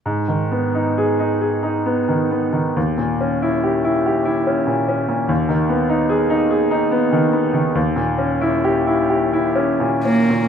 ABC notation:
X:1
M:3/4
L:1/16
Q:1/4=68
K:G#m
V:1 name="Grand piano"
G,, D, B, D G D G D B, D, B, D, | D,, A,, C E =G E G E C A,, C A,, | D,, D, B, D G D G D B, D, B, D, | D,, A,, C E =G E G E C A,, C A,, |]
V:2 name="Cello"
z12 | z12 | z12 | z8 z2 A,2 |]